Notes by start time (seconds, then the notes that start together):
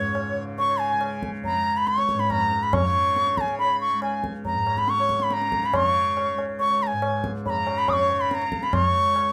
Already playing: C#2 G#2 C#3 C#5
0.15 tabla na
0.33 C#3
0.58 C#6, tabla tin
0.69 C#5
0.80 G#5
0.90 C#3 G#5
1.01 tabla na
1.23 tabla ke
1.44 A#5, tabla tin, tabla ge
1.49 B5
1.53 C#2 A#5
1.77 B5
1.87 B5 C#6, tabla te
1.98 C#5, tabla te
2.09 tabla ke
2.13 G#2
2.19 B5, tabla te
2.30 A#5 B5, tabla na, tabla ge
2.40 A#5
2.51 tabla te
2.63 B5
2.73 C#3 C#6, tabla na, tabla ge
2.84 C#5
3.16 tabla te
3.27 tabla te
3.32 C#3
3.37 G#5 A#5, tabla ke
3.48 tabla te
3.59 B5, tabla tin
3.64 C#5
3.71 B5
3.81 C#6
3.93 C#2
4.02 G#5, tabla na
4.13 G#5
4.24 tabla ke
4.45 A#5, tabla tin, tabla ge
4.54 G#2 A#5
4.67 tabla na
4.77 B5, tabla ke
4.88 C#6, tabla te
4.98 C#5, tabla te
5.09 C#3, tabla ke
5.20 B5, tabla te
5.31 A#5 B5, tabla te
5.42 A#5, tabla te
5.52 tabla ke
5.63 B5, tabla te
5.72 C#3 C#6, tabla na, tabla ge
5.86 C#5
6.17 tabla na
6.33 C#2
6.38 tabla na
6.59 C#6, tabla tin
6.71 C#5
6.83 A#5
6.87 G#5
6.92 G#2 G#5
7.02 tabla na
7.24 tabla ke
7.46 B5, tabla tin, tabla ge
7.50 C#3 A#5 B5
7.56 A#5
7.67 tabla na
7.78 B5
7.88 B5 D#6, tabla na, tabla ge
7.93 C#6
7.99 C#5
8.10 C#3, tabla te
8.21 B5
8.31 A#5 B5, tabla te
8.41 A#5, tabla te
8.52 tabla ke
8.63 B5, tabla te
8.71 C#2 C#6, tabla na, tabla ge
8.85 C#5
9.16 tabla na